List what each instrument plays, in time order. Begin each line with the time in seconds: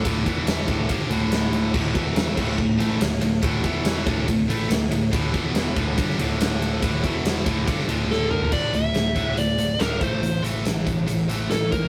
0.04 picked electric bass D1, distorted electric guitar D2 A2 D3, kick, ride
0.26 picked electric bass E1, distorted electric guitar E2 B2 E3, kick, ride
0.47 snare, ride
0.68 picked electric bass D1, distorted electric guitar D2 A2 D3, kick, ride
0.89 picked electric bass G1, distorted electric guitar G2 D3 G3, kick, ride
1.10 picked electric bass D1, distorted electric guitar D2 A2 D3, ride
1.32 snare, ride
1.53 ride
1.73 picked electric bass D1, distorted electric guitar D2 A2 D3, kick, crash
1.95 picked electric bass E1, distorted electric guitar E2 B2 E3, kick, ride
2.16 snare, ride
2.37 picked electric bass D1, distorted electric guitar D2 A2 D3, kick, crash
2.58 picked electric bass D1, distorted electric guitar D2 A2, kick
2.79 picked electric bass A1, distorted electric guitar A2 E3 A3, ride
3.00 picked electric bass D1, distorted electric guitar D2 A2, snare, ride
3.21 picked electric bass D1, distorted electric guitar D2 A2, ride
3.43 picked electric bass D1, distorted electric guitar D2 A2 D3, kick, ride
3.64 picked electric bass E1, distorted electric guitar E2 B2 E3, kick, ride
3.85 snare, ride
4.06 picked electric bass D1, distorted electric guitar D2 A2 D3, kick, ride
4.28 picked electric bass D1, distorted electric guitar D2 A2, kick, ride
4.49 picked electric bass A1, distorted electric guitar A2 E3 A3, ride
4.70 picked electric bass D1, distorted electric guitar D2 A2, snare, ride
4.91 picked electric bass D1, distorted electric guitar D2 A2, ride
5.12 picked electric bass D1, distorted electric guitar D2 A2 D3, kick, ride
5.33 picked electric bass E1, distorted electric guitar E2 B2 E3, kick, ride
5.55 snare, ride
5.76 picked electric bass D1, distorted electric guitar D2 A2 D3, kick, ride
5.97 picked electric bass G1, distorted electric guitar G2 D3 G3, kick, ride
6.10 snare
6.18 picked electric bass D1, distorted electric guitar D2 A2 D3, ride
6.41 snare, ride
6.62 ride
6.82 picked electric bass D1, distorted electric guitar D2 A2 D3, kick, ride
7.03 picked electric bass E1, distorted electric guitar E2 B2 E3, kick, ride
7.25 snare, ride
7.46 picked electric bass D1, distorted electric guitar D2 A2 D3, kick, ride
7.67 picked electric bass G1, distorted electric guitar G2 D3 G3, kick, ride
7.80 snare
7.88 picked electric bass D1, distorted electric guitar D2 A2 D3, ride
8.11 lead electric guitar A4, snare
8.31 lead electric guitar A#4, mid tom
8.42 floor tom
8.51 picked electric bass D1, distorted electric guitar D2 A2 D3, lead electric guitar D5, kick, crash
8.73 picked electric bass D1, distorted electric guitar D2 A2, lead electric guitar E5, closed hi-hat
8.94 picked electric bass D1, distorted electric guitar D2 A2, snare, closed hi-hat
9.15 picked electric bass D1, distorted electric guitar D2 A2 D3, kick, closed hi-hat
9.37 picked electric bass D1, distorted electric guitar D2 A2, lead electric guitar D5, closed hi-hat
9.58 distorted electric guitar D2 A2, closed hi-hat
9.79 picked electric bass D1, distorted electric guitar D2 A2 D3, lead electric guitar A#4, snare, closed hi-hat
10.01 picked electric bass A1, distorted electric guitar A2 E3 A3, lead electric guitar C5, kick, closed hi-hat
10.22 picked electric bass A1, distorted electric guitar A2 E3, closed hi-hat
10.43 picked electric bass A1, distorted electric guitar A2 E3 A3, closed hi-hat
10.65 picked electric bass A1, distorted electric guitar A2 E3, snare, closed hi-hat
10.86 picked electric bass A1, distorted electric guitar A2 E3, kick, closed hi-hat
11.07 picked electric bass A1, distorted electric guitar A2 E3, closed hi-hat
11.29 distorted electric guitar A2 E3 A3, closed hi-hat
11.51 picked electric bass A1, distorted electric guitar A2 E3, lead electric guitar A4, snare, closed hi-hat
11.72 picked electric bass B1, distorted electric guitar A2 E3, lead electric guitar A#4, kick, closed hi-hat